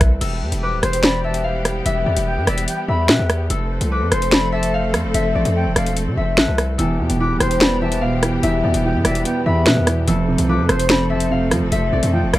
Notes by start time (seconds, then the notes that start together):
Already playing: C2 F3 A3 C4 A4 B4 D5 E5
0.01 kick, cross-stick, closed hi-hat
0.21 E1 E3 G3 B3 G4 A4, closed hi-hat, crash
0.42 E2
0.52 E1, closed hi-hat
0.62 B4 D6
0.73 D1
0.83 E1 C5 C6, cross-stick, closed hi-hat
0.93 closed hi-hat
1.03 D5 B5, finger snap, snare
1.24 E5 A5
1.34 closed hi-hat
1.44 F5
1.65 cross-stick, closed hi-hat
1.86 E1 E5, closed hi-hat
2.06 E2 D5
2.16 E1, closed hi-hat
2.27 G5
2.37 G2
2.47 E1 D5 E5, cross-stick, closed hi-hat
2.58 closed hi-hat
2.68 G5, closed hi-hat
2.88 E2 E5 B5
3.08 B2 B4, finger snap, snare
3.19 E2
3.30 cross-stick, closed hi-hat
3.50 F1 F3 A3 C4 A4, closed hi-hat
3.81 C2, closed hi-hat
3.91 B4 D6
4.01 F2
4.12 F1 C5 C6, cross-stick, closed hi-hat
4.22 closed hi-hat
4.31 D5 B5, finger snap, snare
4.52 E5 A5
4.63 closed hi-hat
4.74 F5
4.94 F2, cross-stick, closed hi-hat
5.04 F1
5.14 F1 E5, closed hi-hat
5.35 A1 D5
5.45 F2, closed hi-hat
5.55 G5
5.66 E1
5.76 E1 D5 F5, cross-stick, closed hi-hat
5.86 closed hi-hat
5.97 closed hi-hat
6.07 C3
6.17 F1 E5
6.37 A1 B4, finger snap, snare
6.48 C2
6.58 cross-stick, closed hi-hat
6.78 E1 E2 E3 G3 B3 G4 A4, closed hi-hat
6.99 E2 B2
7.10 E1, closed hi-hat
7.20 E3 B4 D6
7.30 D1
7.40 E1 C5 C6, cross-stick, closed hi-hat
7.51 closed hi-hat
7.60 B3 D5 B5, finger snap, snare
7.81 E2 E5 A5
7.92 closed hi-hat
8.01 B2 F5
8.22 E3, cross-stick, closed hi-hat
8.43 E1 E2 E5, closed hi-hat
8.64 E2 B2 D5
8.74 E1, closed hi-hat
8.84 E3 G5
8.95 G2
9.05 E1 D5 E5, cross-stick, closed hi-hat
9.15 closed hi-hat
9.25 B3 G5, closed hi-hat
9.46 E2 E5 B5
9.66 B2 B4, finger snap, snare
9.77 E2
9.87 E3, cross-stick, closed hi-hat
10.08 F1 F2 F3 A3 C4 A4, closed hi-hat
10.28 C3
10.38 C2, closed hi-hat
10.49 F3 B4 D6
10.59 F2
10.69 F1 C5 C6, cross-stick, closed hi-hat
10.80 closed hi-hat
10.89 C4 D5 B5, finger snap, snare
11.10 F2 E5 A5
11.20 closed hi-hat
11.30 C3 F5
11.51 F2 F3, cross-stick, closed hi-hat
11.62 F1
11.72 F1 E5, closed hi-hat
11.92 A1 C3 D5
12.03 F2, closed hi-hat
12.13 F3 G5
12.23 E1
12.34 E1 D5 F5, cross-stick, closed hi-hat